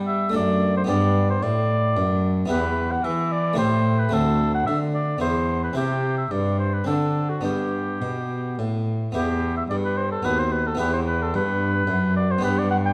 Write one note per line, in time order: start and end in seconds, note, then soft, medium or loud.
0.00 0.31 G3 medium
0.00 0.34 G3 medium
0.00 0.30 B3 soft
0.00 0.30 D4 soft
0.00 0.31 G4 soft
0.07 0.34 E5 medium
0.29 0.85 A3 soft
0.29 0.85 D4 soft
0.29 0.87 A4 soft
0.35 0.85 F#2 medium
0.35 0.88 F#2 medium
0.35 0.76 D5 medium
0.77 0.83 C5 medium
0.84 1.39 B3 soft
0.84 1.40 D4 soft
0.84 2.46 G4 soft
0.89 1.39 G2 medium
0.89 1.42 G2 medium
0.89 1.29 D5 medium
1.30 1.44 C5 medium
1.42 1.98 A2 medium
1.42 1.93 A2 medium
1.42 2.37 D5 medium
1.96 2.49 F#2 medium
1.96 2.47 F#2 medium
2.46 3.00 E2 medium
2.46 3.53 B3 soft
2.46 3.54 E4 soft
2.46 3.55 G4 medium
2.50 3.01 E2 soft
2.50 2.93 B4 medium
2.92 3.06 F#5 medium
3.04 3.60 E3 medium
3.04 3.55 E3 medium
3.04 3.33 E5 medium
3.32 3.58 D5 medium
3.53 4.08 A3 soft
3.53 4.10 E4 soft
3.53 4.10 G4 soft
3.58 4.09 A2 medium
3.58 4.12 A2 medium
3.58 4.01 C5 medium
3.99 4.15 B4 medium
4.09 4.68 D2 medium
4.09 5.16 A3 medium
4.09 5.17 C4 soft
4.09 5.18 F#4 soft
4.13 4.64 D2 medium
4.13 4.54 A4 medium
4.54 4.66 F#5 medium
4.66 5.21 D3 medium
4.66 5.18 D3 medium
4.66 4.79 E5 medium
4.94 5.21 D5 medium
5.18 5.75 E2 medium
5.18 5.73 E2 soft
5.18 5.73 B3 soft
5.18 5.74 E4 soft
5.18 5.62 C5 medium
5.64 5.77 B4 medium
5.73 6.30 C3 medium
5.73 6.28 C3 soft
5.73 6.82 C4 soft
5.73 6.83 E4 soft
5.73 6.17 G4 medium
6.18 6.33 E5 medium
6.31 6.86 G2 medium
6.31 6.83 G2 soft
6.31 6.58 D5 medium
6.59 6.75 C5 medium
6.74 6.86 B4 medium
6.84 7.43 D3 medium
6.84 7.40 D3 soft
6.84 7.41 C4 soft
6.84 7.41 D4 soft
6.84 7.31 A4 medium
7.30 7.44 F#4 medium
7.41 8.02 G2 medium
7.41 7.98 G2 soft
7.41 9.10 B3 soft
7.41 9.11 D4 soft
7.41 8.57 G4 medium
8.00 8.59 B2 soft
8.00 8.55 B2 soft
8.57 9.14 A2 soft
8.57 9.12 A2 soft
9.12 9.67 E2 medium
9.12 9.67 E2 soft
9.12 10.21 B3 soft
9.12 10.22 E4 soft
9.12 9.55 G4 medium
9.57 9.63 E5 medium
9.70 10.24 G2 medium
9.70 10.22 G2 medium
9.70 9.76 D5 medium
9.85 9.99 B4 medium
9.97 10.11 C5 medium
10.12 10.26 A4 medium
10.23 10.79 D#2 medium
10.23 10.77 D#2 soft
10.23 10.74 B3 soft
10.23 10.78 F#4 soft
10.23 10.41 B4 medium
10.39 10.54 C5 medium
10.52 10.68 B4 medium
10.67 10.79 A4 medium
10.75 11.83 B3 soft
10.75 12.38 E4 soft
10.75 12.38 G4 soft
10.79 11.30 E2 soft
10.79 11.36 E2 medium
10.79 10.93 B4 medium
10.94 11.00 C5 medium
11.07 11.24 B4 medium
11.22 11.35 A4 medium
11.34 11.84 G2 medium
11.34 11.87 G2 medium
11.34 12.15 B4 medium
11.87 12.39 F#2 soft
11.87 12.42 F#2 medium
12.16 12.32 D5 medium
12.31 12.43 C5 medium
12.38 12.93 B3 soft
12.38 12.93 D4 soft
12.38 12.93 G4 soft
12.43 12.93 G2 medium
12.43 12.93 G2 soft
12.43 12.60 B4 loud
12.58 12.70 D5 medium
12.71 12.77 F#5 loud
12.86 12.92 G5 medium